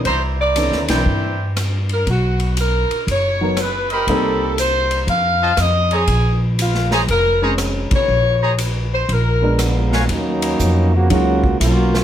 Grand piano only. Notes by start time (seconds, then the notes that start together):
0.56 D#3 B3 C#4 A4
0.89 E3 C4 D4 A#4
3.41 F#3 B3 D#4 A#4
4.09 G3 A#3 C4 D#4
7.42 G#3 C4 C#4 A#4
9.42 G#3 B3 D4 A#4
11.10 F#3 C#4 D#4 F4 G#4